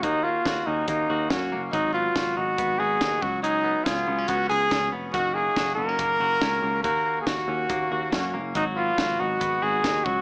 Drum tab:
HH |x-x-x-x-|x-x-x-x-|x-x-x-x-|x-x-x-x-|
SD |--o---o-|--o---o-|--o---o-|--o---o-|
BD |o-o-o-o-|o-o-o-oo|--o-o-o-|o-o-o-o-|

HH |x-x-x-x-|x-x-x-x-|
SD |--o---o-|--o---o-|
BD |o-o-o-o-|o-o-o-oo|